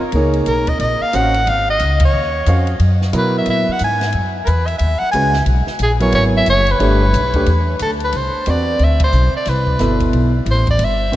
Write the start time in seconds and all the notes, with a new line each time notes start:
0.12 C#2 A#3 D#4 C#5, ride
0.16 G#4
0.33 ride
0.46 B1 A#4, hi-hat pedal, ride
0.67 D#5, kick, ride
0.79 A#1 D#5, ride
1.01 F5, muted upright bass stroke
1.13 A1 C#4 F#4 C5 F5 F#5, hi-hat pedal, ride
1.34 ride
1.47 G#1 F5, ride
1.70 D#5
1.79 C#2, hi-hat pedal, ride
2.00 kick, ride
2.05 C#5
2.13 D#2
2.46 F2 C#4 F#4 C5 F5, hi-hat pedal, ride
2.67 ride
2.79 F#2, ride
3.02 snare
3.13 B2 F#3 B3 E4 A#4, hi-hat pedal, ride
3.18 B4
3.38 E5
3.46 A#2, ride
3.50 E5
3.69 F#5, muted upright bass stroke
3.79 G#2, hi-hat pedal, ride
3.84 G#5
4.01 snare, ride
4.12 F#2, ride
4.45 E2 A#4 B4, hi-hat pedal, ride
4.67 E5, ride
4.78 D#2 E5, ride
4.99 F#5, muted upright bass stroke
5.11 C#2 G#3 C#4 F#4 B4 G#5, hi-hat pedal, ride
5.33 snare
5.46 B1, ride
5.67 muted upright bass stroke, snare
5.79 A#1 G#4, hi-hat pedal, ride
6.00 F#3 B3 E4 A#4 C#5, ride
6.12 G#1 C#5, ride
6.37 E5
6.46 F#1 C#5, hi-hat pedal, ride
6.67 ride
6.71 B4
6.80 G1 A3 D4 G4 B4, ride
7.13 B1, hi-hat pedal, ride
7.34 A3 D4 G4 B4, kick, ride
7.46 E2, ride
7.79 D2 A4, hi-hat pedal, ride
8.00 ride
8.04 B4
8.12 C2 C5, ride
8.35 muted upright bass stroke
8.46 E2 C4 F#4 B4 D5, hi-hat pedal, ride
8.50 D5
8.79 D2, ride
8.84 E5
9.00 kick, ride
9.04 C5
9.12 B1, hi-hat pedal
9.34 D5, muted upright bass stroke
9.45 C2 B4, snare, ride
9.67 kick
9.79 G1 B2 E4 A4 B4, snare, hi-hat pedal, ride
10.00 kick, ride
10.13 B1, ride
10.46 A1, hi-hat pedal, ride
10.51 C5
10.67 D5, kick, ride
10.79 G1, ride
10.84 E5
11.12 B1 C4 B4, hi-hat pedal, ride